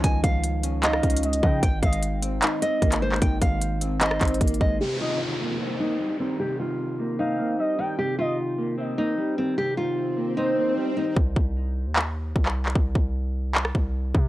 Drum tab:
HH |x-----x-----x-----x-----x-----x-x-x-x--x--------|x-----x--x--x-----x-----x-----x-----x--x--------|x-----x-----x-----x-----x-----x-x-x-x-x-x-------|------------------------------------------------|
CP |------------------------x-----------------------|------------------------x--------------x-----x--|------------------------x-----x-----------------|------------------------------------------------|
SD |---------------------------r--------------------|------------------------------------------------|---------------------------r--------------------|------------------------------------------------|
BD |o-----o-----------------------o-----------o-----|o-----o-----------------------------o-----------|o-----o-----------------------o-----o-----o-----|------------------------------------------------|

HH |------------------------------------------------|------------------------------------------------|------------------------------------------------|------------------------------------------------|
CP |------------------------------------------------|------------------------------------------------|------------------------------------------------|------------------------x--------------x-----x--|
SD |------------------------------------------------|------------------------------------------------|------------------------------------------------|------------------------------------------------|
BD |------------------------------------------------|------------------------------------------------|------------------------------------------------|o-----o-----------------------------o-----------|

HH |------------------------------------------------|
CP |------------------------x-----------------------|
SD |---------------------------r--------------------|
BD |o-----o-----------------------o-----------o-----|